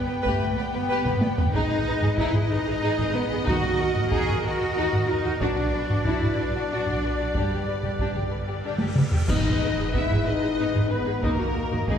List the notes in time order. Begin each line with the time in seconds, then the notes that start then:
Already playing: B3 G4 B4 G5
0.08 G1 B4
0.23 G1 A3 G4 B4, taiko
0.39 G1 B4
0.56 G1 B3 B4 D5
0.73 G1 B4
0.88 G1 G4 B4
1.05 G1 B4, taiko low-mid
1.21 G1 B4 D5, taiko high
1.38 G1 B4, taiko low
1.53 G#1 G#3 D#4 G#4 D#5, taiko
1.69 G#1 G#4
1.85 G#1 G#4 B4
2.02 G#1 G#4, taiko low-mid
2.18 G#1 D#4 E4 G#4, taiko
2.34 G#1 G#4, taiko low-mid
2.49 G#1 D#4 G#4 B4
2.66 G#1 G#4
2.81 G#1 D#4 G#4
2.97 G#1 G#4, taiko low-mid
3.14 G#1 B3 G#4 B4
3.30 G#1 G#4
3.44 D#2 D#3 A#3 D#4 F#4, taiko
3.49 F#4 A#4
3.61 D#2 F#4
3.66 F#4
3.79 D#2 F#4 A#4
3.94 D#2 F#4, taiko low-mid
4.10 D#2 D#4 F#4 G#4, taiko
4.27 D#2 F#4, taiko low-mid
4.43 D#2 F#4 A#4
4.60 D#2 F#4
4.76 D#2 D#4 F#4
4.92 D#2 F#4, taiko low-mid
5.09 D#2 D#4 F#4 A#4
5.24 D#2 F#4
5.40 B1 B3 D4 F#4 D5, taiko
5.56 B1 F#4
5.73 B1 F#4 B4
5.89 B1 F#4, taiko low-mid
6.05 B1 D4 E4 F#4, taiko
6.22 B1 F#4, taiko low-mid
6.37 B1 D4 F#4 B4
6.55 B1 F#4
6.71 B1 D4 F#4
6.87 B1 F#4, taiko low-mid
7.04 B1 F#4 B4
7.20 B1 F#4
7.34 G1 G3 D4 G4, taiko, cymbal swell
7.52 G1 G4
7.67 G1 G4 B4
7.83 G1 G4, taiko low-mid
7.99 G1 D4 G4, taiko
8.14 G1 G4, taiko low-mid
8.30 G1 G4 B4
8.47 G1 G4
8.64 G1 D4 G4
8.79 G1 G4, taiko high
8.96 G1 G4 B4, taiko mid
9.12 G1 G4, taiko low
9.28 G#1 G#2 B3 D#4 G#4 B4 D#5, concert bass drum, taiko, crash, impact
9.45 G#1 D#4 G#4
9.62 G#1 G#4 B4
9.78 G#1 D#4 G#4, taiko low-mid
9.93 G#1 B3 D#4 E4 E5, taiko
10.11 G#1 D#4 G#4, taiko low-mid
10.24 G#1 D#4 G#4 B4 D#5
10.29 D#4
10.42 G#1 D#4 G#4
10.58 G#1 B3 D#4
10.74 G#1 D#4 G#4, taiko low-mid
10.90 G#1 B3 G#4 B4
11.06 G#1 D#4 G#4
11.22 D#2 A#3 D#4 F#4 A#4 D#5, taiko
11.39 D#2 D#4 F#4
11.54 D#2 F#4 A#4
11.71 D#2 D#4 F#4, taiko low-mid
11.87 D#2 G#3 A#3 D#4 G#4, taiko